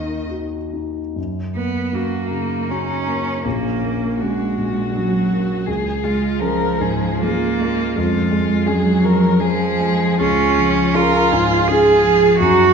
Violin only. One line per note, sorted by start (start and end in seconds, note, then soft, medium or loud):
0.00 0.30 D#5 medium
1.94 2.29 F#4 soft
2.32 3.47 D#4 soft
3.46 4.20 C#4 soft
4.21 5.68 F#4 soft
5.67 6.05 G#4 soft
6.04 6.41 F4 soft
6.40 6.82 A#4 medium
6.81 7.22 G#4 soft
7.23 7.96 F4 soft
7.97 8.69 F4 medium
8.67 9.06 G#4 medium
9.04 9.41 A#4 medium
9.40 10.21 G#4 medium
10.21 10.96 F4 medium
10.95 11.33 A#4 medium
11.31 11.70 G#4 medium
11.69 12.40 F4 medium
12.41 12.73 D#4 medium